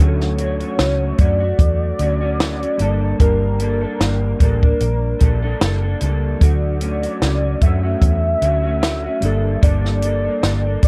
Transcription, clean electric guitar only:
0.00 0.37 D3 medium
0.00 0.38 A3 medium
0.00 0.39 C#4 medium
0.00 0.40 F#4 medium
0.38 0.61 D3 medium
0.38 0.61 A3 medium
0.38 0.60 C#4 medium
0.38 0.59 F#4 medium
0.60 0.78 A3 soft
0.60 0.78 C#4 soft
0.60 0.78 F#4 soft
0.79 1.18 A3 medium
0.79 1.19 C#4 medium
0.79 1.20 F#4 medium
1.18 1.41 D3 medium
1.18 1.41 A3 medium
1.18 1.42 C#4 medium
1.18 1.39 F#4 medium
1.40 1.99 A3 soft
1.40 1.99 F#4 soft
1.99 2.21 D3 medium
1.99 2.22 A3 medium
1.99 2.21 C#4 medium
1.99 2.19 F#4 medium
2.21 2.38 A3 soft
2.21 2.39 C#4 medium
2.21 2.39 F#4 medium
2.39 2.61 D3 medium
2.39 2.62 A3 medium
2.39 2.61 C#4 medium
2.39 2.59 F#4 medium
2.60 2.79 A3 soft
2.60 2.80 C#4 medium
2.60 2.79 F#4 medium
2.79 3.18 G3 medium
2.79 3.19 A#3 medium
2.79 3.20 D4 medium
2.79 3.21 A4 medium
3.19 3.58 G3 medium
3.19 3.59 A#3 medium
3.19 3.60 D4 medium
3.59 3.82 G3 medium
3.59 3.82 A#3 medium
3.59 3.82 D4 medium
3.59 3.80 A4 medium
3.81 3.99 A#3 soft
3.81 4.00 D4 medium
3.81 4.00 A4 medium
3.99 4.38 G3 medium
3.99 4.39 A#3 medium
3.99 4.41 D4 medium
4.39 4.62 G3 medium
4.39 4.63 A#3 medium
4.39 4.62 D4 medium
4.39 4.64 A4 medium
4.63 5.19 A#3 soft
4.63 5.21 D4 soft
5.19 5.42 G3 medium
5.19 5.43 A#3 medium
5.19 5.43 D4 medium
5.19 5.41 A4 medium
5.42 5.60 A#3 soft
5.42 5.61 D4 medium
5.42 5.61 A4 medium
5.60 5.83 G3 medium
5.60 5.83 A#3 medium
5.60 5.83 D4 medium
5.60 5.81 A4 medium
5.82 6.01 A#3 soft
5.82 6.02 D4 medium
5.82 6.01 A4 medium
6.01 6.41 G3 medium
6.01 6.41 A#3 medium
6.01 6.42 D4 medium
6.01 6.43 A4 medium
6.41 6.79 D3 medium
6.41 6.80 A3 medium
6.41 6.82 F#4 medium
6.80 7.03 D3 medium
6.80 7.03 A3 medium
6.80 7.03 C#4 medium
6.80 7.01 F#4 medium
7.02 7.21 A3 soft
7.02 7.22 C#4 soft
7.02 7.21 F#4 medium
7.21 7.43 D3 medium
7.21 7.44 A3 medium
7.21 7.44 C#4 medium
7.21 7.42 F#4 medium
7.43 7.61 A3 soft
7.43 7.62 C#4 soft
7.43 7.61 F#4 soft
7.61 7.83 D3 medium
7.61 7.84 A3 medium
7.61 7.84 C#4 medium
7.61 7.82 F#4 medium
7.83 8.41 A3 soft
7.83 8.43 C#4 soft
7.83 8.42 F#4 soft
8.41 8.64 D3 medium
8.41 8.64 A3 medium
8.41 8.64 C#4 medium
8.41 8.62 F#4 medium
8.63 8.81 A3 soft
8.63 8.82 C#4 soft
8.63 8.82 F#4 medium
8.82 9.04 D3 medium
8.82 9.05 A3 medium
8.82 9.04 C#4 medium
8.82 9.03 F#4 medium
9.04 9.22 A3 soft
9.04 9.23 C#4 soft
9.04 9.22 F#4 medium
9.22 9.60 G3 medium
9.22 9.61 A#3 medium
9.22 9.62 D4 medium
9.22 9.63 A4 medium
9.62 10.00 G3 medium
9.62 10.02 A#3 medium
9.62 10.03 D4 medium
9.62 10.04 A4 medium
10.02 10.24 G3 medium
10.02 10.25 A#3 medium
10.02 10.25 D4 medium
10.02 10.23 A4 medium
10.24 10.42 A#3 soft
10.24 10.43 D4 soft
10.24 10.43 A4 soft
10.42 10.65 G3 medium
10.42 10.65 A#3 medium
10.42 10.65 D4 medium
10.42 10.63 A4 medium
10.65 10.82 A#3 soft
10.65 10.83 D4 soft
10.65 10.83 A4 soft
10.82 10.88 G3 medium
10.82 10.88 A#3 medium
10.82 10.88 D4 medium

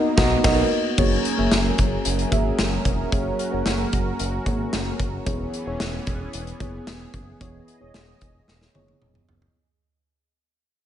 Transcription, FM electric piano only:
0.00 0.17 B3 loud
0.00 0.17 D#4 loud
0.00 0.18 F#4 loud
0.00 0.18 A#4 loud
0.00 0.18 D#5 loud
0.17 0.36 B3 loud
0.17 0.36 D#4 loud
0.17 0.36 F#4 loud
0.17 0.36 A#4 loud
0.17 0.36 D#5 loud
0.44 0.62 B3 loud
0.44 0.62 D#4 medium
0.44 0.63 F#4 loud
0.44 0.63 A#4 loud
0.44 0.63 D#5 loud
0.97 1.30 A#3 medium
0.97 1.30 F#4 medium
0.97 1.30 G#4 medium
0.97 1.30 C#5 medium
1.38 2.13 A#3 medium
1.38 2.13 F#4 medium
1.38 2.13 G#4 medium
1.38 2.14 E5 medium
2.31 2.96 A#3 medium
2.31 2.96 F#4 medium
2.31 2.96 G#4 medium
2.31 2.97 E5 medium
3.12 3.44 A#3 medium
3.12 3.44 F#4 medium
3.12 3.45 G#4 medium
3.12 3.45 C#5 medium
3.52 4.27 A#3 medium
3.52 4.27 F#4 medium
3.52 4.28 G#4 medium
3.52 4.28 C#5 medium
4.46 5.10 A#3 medium
4.46 5.11 F#4 medium
4.46 5.11 G#4 medium
4.46 5.11 C#5 medium
5.26 6.03 E3 medium
5.26 5.58 B3 medium
5.26 5.59 E4 medium
5.26 5.59 G#4 medium
5.26 5.59 C#5 medium
5.66 6.42 B3 medium
5.66 6.42 E4 medium
5.66 6.42 G#4 medium
5.66 6.42 C#5 medium
6.60 7.25 B3 medium
6.60 7.25 E4 medium
6.60 7.25 G#4 medium
6.60 7.25 C#5 medium
7.40 8.17 E3 medium
7.40 7.73 B3 medium
7.40 7.73 E4 medium
7.40 7.73 G#4 medium
7.40 7.73 C#5 medium
7.80 8.56 B3 medium
7.80 8.56 E4 medium
7.80 8.56 G#4 medium
7.80 8.56 C#5 medium
8.74 9.39 B3 medium
8.74 9.39 E4 medium
8.74 9.39 G#4 medium
8.74 9.40 C#5 medium

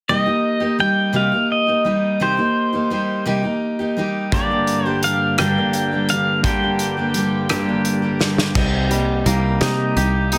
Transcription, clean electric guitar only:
4.32 5.41 G2 medium
4.32 5.37 D3 medium
4.32 5.40 G3 medium
4.32 5.39 A#3 medium
4.32 5.39 D4 medium
4.32 5.38 G4 medium
5.38 6.42 G2 medium
5.38 6.43 D3 medium
5.38 6.45 G3 medium
5.38 6.45 A#3 medium
5.38 6.42 D4 medium
5.38 6.47 G4 medium
6.43 7.48 G2 medium
6.43 7.48 D3 medium
6.43 7.48 G3 medium
6.43 7.49 A#3 medium
6.43 7.49 D4 medium
6.43 7.48 G4 medium
7.50 8.55 G2 medium
7.50 8.55 D3 medium
7.50 8.55 G3 medium
7.50 8.54 A#3 medium
7.50 8.54 D4 medium
7.50 8.53 G4 medium
8.56 10.32 C3 medium
8.91 10.38 G3 medium
9.26 10.38 A#3 medium
9.61 10.32 D#4 medium
9.97 10.38 G4 medium
10.33 10.38 D#4 medium

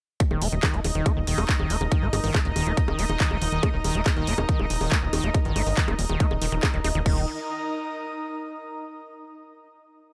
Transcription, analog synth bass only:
0.31 0.38 D#1 medium
0.42 0.49 D#1 loud
0.52 0.59 D#1 medium
0.74 0.81 D#1 medium
0.84 0.91 D#1 loud
0.95 1.02 D#1 medium
1.17 1.24 D#1 medium
1.27 1.34 D#1 loud
1.38 1.45 D#1 medium
1.59 1.66 D#1 medium
1.70 1.77 D#1 loud
1.81 1.88 D#1 medium
2.02 2.09 G1 medium
2.13 2.20 G1 loud
2.24 2.31 G1 medium
2.45 2.52 D#1 medium
2.56 2.63 D#1 loud
2.67 2.74 D#1 medium
2.88 2.95 D#1 medium
2.99 3.06 D#1 loud
3.09 3.16 D#1 medium
3.31 3.38 D#1 medium
3.42 3.49 D#1 loud
3.52 3.59 D#1 loud
3.74 3.81 D#1 medium
3.84 3.91 D#1 loud
3.95 4.02 D#1 medium
4.17 4.24 D#1 medium
4.27 4.34 D#1 loud
4.38 4.45 D#1 medium
4.59 4.66 D#1 medium
4.70 4.77 D#1 loud
4.81 4.88 D#1 medium
5.02 5.09 D#1 medium
5.13 5.20 D#1 loud
5.24 5.31 D#1 medium
5.45 5.52 G1 medium
5.56 5.63 G1 loud
5.67 5.74 G1 medium
5.88 5.95 D#1 medium
5.99 6.06 D#1 loud
6.09 6.16 D#1 medium
6.31 6.38 D#1 medium
6.42 6.49 D#1 loud
6.52 6.59 D#1 medium
6.74 6.81 D#1 medium
6.84 6.91 D#1 loud
6.95 7.02 D#1 loud
7.06 7.26 D#1 loud

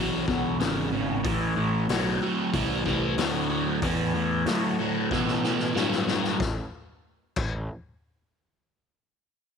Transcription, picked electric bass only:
0.00 0.58 B1 medium
0.60 1.23 G#1 loud
1.25 1.87 A1 medium
1.89 2.19 B1 medium
2.21 muted picked electric bass stroke soft
2.54 3.16 C2 medium
3.18 3.80 D2 loud
3.83 4.45 E2 medium
4.46 5.09 A2 medium
5.11 5.74 B2 medium
5.76 6.38 G2 loud
6.40 6.58 A1 medium
7.37 7.67 A1 medium

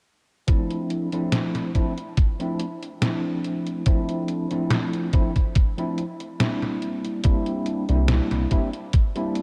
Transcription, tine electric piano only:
0.47 1.07 F3 medium
0.47 1.08 A3 medium
0.47 1.08 C4 medium
0.47 1.08 D4 medium
0.47 1.08 E4 medium
1.12 1.70 F3 medium
1.12 1.70 A3 medium
1.12 1.70 C4 medium
1.12 1.71 D4 medium
1.12 1.71 E4 medium
1.75 1.92 F3 medium
1.75 1.92 A3 medium
1.75 1.92 C4 medium
1.75 1.92 D4 medium
1.75 1.92 E4 loud
2.39 2.64 F3 medium
2.39 2.64 A3 medium
2.39 2.64 C4 medium
2.39 2.64 D4 medium
2.39 2.64 E4 loud
3.01 3.81 F3 medium
3.01 3.82 A3 medium
3.01 3.82 C4 medium
3.01 3.82 D4 medium
3.01 3.82 E4 medium
3.86 4.46 F3 medium
3.86 4.46 A3 medium
3.86 4.46 C4 medium
3.86 4.46 D4 medium
3.86 4.47 E4 medium
4.50 5.08 F3 medium
4.50 5.09 A3 medium
4.50 5.09 C4 medium
4.50 5.09 D4 medium
4.50 5.09 E4 medium
5.13 5.30 F3 medium
5.13 5.30 A3 medium
5.13 5.30 C4 medium
5.13 5.30 D4 medium
5.13 5.31 E4 loud
5.78 6.02 F3 medium
5.78 6.02 A3 medium
5.78 6.02 C4 medium
5.78 6.02 D4 medium
5.78 6.02 E4 loud
6.39 7.20 G3 medium
6.39 7.20 A#3 medium
6.39 7.20 C4 medium
6.39 7.20 D4 medium
6.39 7.20 E4 medium
7.24 7.84 G3 medium
7.24 7.84 A#3 medium
7.24 7.84 C4 medium
7.24 7.84 D4 medium
7.24 7.84 E4 medium
7.89 8.46 G3 medium
7.89 8.47 A#3 medium
7.89 8.47 C4 medium
7.89 8.47 D4 medium
7.89 8.47 E4 medium
8.51 8.68 G3 medium
8.51 8.68 A#3 medium
8.51 8.68 C4 medium
8.51 8.68 D4 medium
8.51 8.68 E4 loud
9.15 9.40 G3 medium
9.15 9.40 A#3 medium
9.15 9.40 C4 medium
9.15 9.40 D4 medium
9.15 9.40 E4 loud

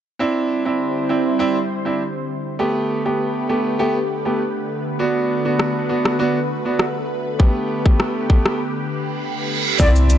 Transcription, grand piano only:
0.19 0.62 C4 medium
0.19 0.62 D4 medium
0.19 0.62 E4 medium
0.65 1.06 C4 medium
0.65 1.06 D4 medium
0.65 1.06 E4 medium
1.09 1.37 C4 medium
1.09 1.37 D4 medium
1.09 1.38 E4 medium
1.39 1.56 C4 medium
1.39 1.56 D4 medium
1.39 1.57 E4 loud
1.85 2.01 C4 medium
1.85 2.01 D4 medium
1.85 2.01 E4 medium
2.59 3.01 A3 medium
2.59 3.02 B3 medium
2.59 3.02 G4 medium
3.05 3.46 A3 medium
3.05 3.46 B3 medium
3.05 3.46 G4 medium
3.49 3.77 A3 medium
3.49 3.77 B3 medium
3.49 3.77 G4 medium
3.79 3.96 A3 medium
3.79 3.96 B3 medium
3.79 3.97 G4 loud
4.25 4.41 A3 medium
4.25 4.41 B3 medium
4.25 4.41 G4 medium
4.99 5.41 B3 medium
4.99 5.42 D4 medium
4.99 5.42 F#4 medium
5.45 5.86 B3 medium
5.45 5.86 D4 medium
5.45 5.86 F#4 medium
5.89 6.17 B3 medium
5.89 6.17 D4 medium
5.89 6.17 F#4 medium
6.19 6.36 B3 medium
6.19 6.36 D4 medium
6.19 6.37 F#4 loud
6.65 6.81 B3 medium
6.65 6.81 D4 medium
6.65 6.81 F#4 medium
7.39 7.81 A3 medium
7.39 7.82 B3 medium
7.39 7.82 G4 medium
7.85 8.26 A3 medium
7.85 8.26 B3 medium
7.85 8.26 G4 medium
8.29 8.57 A3 medium
8.29 8.57 B3 medium
8.29 8.58 G4 medium
9.79 10.18 C4 medium
9.79 10.18 D4 medium
9.79 10.18 E4 medium

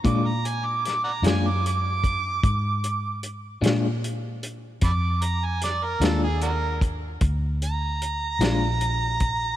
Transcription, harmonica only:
0.07 0.28 D6 loud
0.26 0.48 A#5 medium
0.46 0.67 G#5 medium
0.66 0.83 D6 medium
0.85 1.03 D6 medium
1.04 1.12 D5 medium
1.04 1.10 F#5 medium
1.04 1.27 A#5 medium
1.26 1.49 G#5 medium
1.47 1.64 D6 medium
1.67 3.20 D6 loud
4.85 4.91 A5 medium
4.85 4.91 B5 medium
4.85 5.24 D6 loud
5.23 5.46 A#5 medium
5.45 5.62 G#5 medium
5.64 5.85 D5 medium
5.84 6.05 A#4 medium
6.04 6.21 A4 loud
6.23 6.41 G#4 medium
6.43 6.50 D4 medium
6.43 6.52 F#4 medium
6.43 6.81 A#4 loud
7.64 9.56 A#5 loud

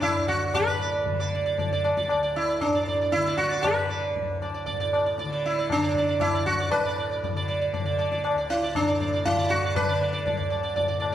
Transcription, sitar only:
0.00 0.28 E4 medium
0.00 0.25 D5 soft
0.27 0.54 F#4 medium
0.27 0.51 D5 soft
0.54 1.28 B4 loud
0.67 0.80 D5 soft
0.81 1.04 D5 soft
1.20 1.34 D5 soft
1.35 1.45 D5 soft
1.46 1.58 D5 soft
1.59 1.71 D5 soft
1.73 1.83 D5 soft
1.84 1.96 D5 soft
1.97 2.09 D5 soft
2.10 2.22 D5 soft
2.23 2.46 D5 soft
2.36 2.62 E4 medium
2.49 2.72 D5 soft
2.61 3.14 D4 medium
2.75 2.87 D5 soft
2.88 3.00 D5 soft
3.01 3.25 D5 soft
3.12 3.37 E4 loud
3.27 3.49 D5 soft
3.37 3.64 F#4 loud
3.51 3.75 D5 soft
3.62 4.36 B4 loud
3.89 4.14 D5 soft
4.42 4.53 D5 soft
4.54 4.65 D5 soft
4.66 4.79 D5 soft
4.80 4.93 D5 soft
4.94 5.05 D5 soft
5.06 5.18 D5 soft
5.19 5.31 D5 soft
5.32 5.56 D5 soft
5.46 5.71 E4 medium
5.59 5.82 D5 soft
5.72 6.24 D4 medium
5.83 5.95 D5 soft
5.97 6.07 D5 soft
6.08 6.32 D5 soft
6.21 6.46 E4 loud
6.34 6.58 D5 soft
6.46 6.70 F#4 medium
6.60 6.83 D5 soft
6.71 7.44 B4 loud
6.85 6.97 D5 soft
6.98 7.10 D5 soft
7.11 7.23 D5 soft
7.24 7.35 D5 soft
7.37 7.47 D5 soft
7.48 7.60 D5 soft
7.61 7.73 D5 soft
7.74 7.84 D5 soft
7.86 7.97 D5 soft
7.99 8.11 D5 soft
8.12 8.23 D5 soft
8.24 8.37 D5 soft
8.38 8.61 D5 soft
8.50 8.75 E4 medium
8.63 8.86 D5 soft
8.76 9.25 D4 medium
8.88 8.99 D5 soft
9.01 9.12 D5 soft
9.14 9.37 D5 soft
9.25 9.52 E4 loud
9.38 9.62 D5 soft
9.50 9.76 F#4 loud
9.64 9.87 D5 soft
9.76 10.48 B4 loud
9.89 10.00 D5 soft
10.01 10.12 D5 soft
10.13 10.24 D5 soft
10.26 10.36 D5 soft
10.37 10.49 D5 soft
10.50 10.62 D5 soft
10.63 10.75 D5 soft
10.76 10.87 D5 soft
10.88 10.99 D5 soft
11.00 11.11 D5 soft

